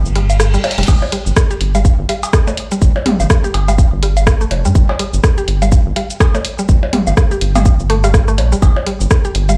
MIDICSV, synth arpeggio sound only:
0, 0, Header, 1, 2, 480
1, 0, Start_track
1, 0, Key_signature, -2, "minor"
1, 0, Tempo, 483871
1, 874, Time_signature, 4, 2, 24, 8
1, 9497, End_track
2, 0, Start_track
2, 0, Title_t, "Synth arpeggio sound"
2, 0, Program_c, 0, 84
2, 154, Note_on_c, 0, 55, 80
2, 208, Note_off_c, 0, 55, 0
2, 534, Note_on_c, 0, 55, 81
2, 573, Note_off_c, 0, 55, 0
2, 774, Note_on_c, 0, 55, 76
2, 813, Note_off_c, 0, 55, 0
2, 1114, Note_on_c, 0, 55, 75
2, 1168, Note_off_c, 0, 55, 0
2, 1494, Note_on_c, 0, 67, 77
2, 1552, Note_off_c, 0, 67, 0
2, 1734, Note_on_c, 0, 55, 77
2, 1757, Note_off_c, 0, 55, 0
2, 2074, Note_on_c, 0, 55, 78
2, 2128, Note_off_c, 0, 55, 0
2, 2454, Note_on_c, 0, 57, 79
2, 2477, Note_off_c, 0, 57, 0
2, 2694, Note_on_c, 0, 55, 76
2, 2717, Note_off_c, 0, 55, 0
2, 3034, Note_on_c, 0, 55, 76
2, 3088, Note_off_c, 0, 55, 0
2, 3414, Note_on_c, 0, 67, 77
2, 3472, Note_off_c, 0, 67, 0
2, 3654, Note_on_c, 0, 55, 76
2, 3677, Note_off_c, 0, 55, 0
2, 3994, Note_on_c, 0, 55, 78
2, 4048, Note_off_c, 0, 55, 0
2, 4374, Note_on_c, 0, 57, 81
2, 4397, Note_off_c, 0, 57, 0
2, 4614, Note_on_c, 0, 55, 77
2, 4637, Note_off_c, 0, 55, 0
2, 4954, Note_on_c, 0, 55, 77
2, 5008, Note_off_c, 0, 55, 0
2, 5334, Note_on_c, 0, 67, 79
2, 5392, Note_off_c, 0, 67, 0
2, 5575, Note_on_c, 0, 55, 79
2, 5598, Note_off_c, 0, 55, 0
2, 5914, Note_on_c, 0, 55, 81
2, 5968, Note_off_c, 0, 55, 0
2, 6295, Note_on_c, 0, 57, 77
2, 6318, Note_off_c, 0, 57, 0
2, 6535, Note_on_c, 0, 55, 78
2, 6558, Note_off_c, 0, 55, 0
2, 6875, Note_on_c, 0, 55, 78
2, 6928, Note_off_c, 0, 55, 0
2, 7254, Note_on_c, 0, 67, 79
2, 7312, Note_off_c, 0, 67, 0
2, 7494, Note_on_c, 0, 55, 76
2, 7517, Note_off_c, 0, 55, 0
2, 7834, Note_on_c, 0, 57, 106
2, 7888, Note_off_c, 0, 57, 0
2, 7974, Note_on_c, 0, 55, 100
2, 8032, Note_off_c, 0, 55, 0
2, 8214, Note_on_c, 0, 57, 103
2, 8253, Note_off_c, 0, 57, 0
2, 8454, Note_on_c, 0, 55, 76
2, 8492, Note_off_c, 0, 55, 0
2, 8794, Note_on_c, 0, 55, 76
2, 8848, Note_off_c, 0, 55, 0
2, 9173, Note_on_c, 0, 67, 78
2, 9231, Note_off_c, 0, 67, 0
2, 9414, Note_on_c, 0, 55, 77
2, 9437, Note_off_c, 0, 55, 0
2, 9497, End_track
0, 0, End_of_file